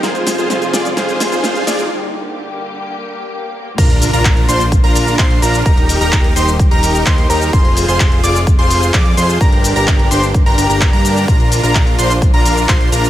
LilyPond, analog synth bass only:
\new Staff \with { instrumentName = "Analog synth bass" } { \clef bass \time 4/4 \key bes \mixolydian \tempo 4 = 128 f,,8. f,,8. f,,8 f,,8. f,,8. f,,8 | r1 | bes,,8. bes,,8. bes,,8. bes,,8. bes,,8 bes,,8 | ees,,8. ees,,8. ees,,8. ees,,8. ees,8 ees,8 |
f,,8. f,,8. f,,8. f,,8. f,8 f,8 | g,,8. g,,8. g,,8. g,,16 g,,16 g,,8 g,8. | bes,,8. bes,,8. bes,,8. bes,,8. bes,,8 bes,,8 | }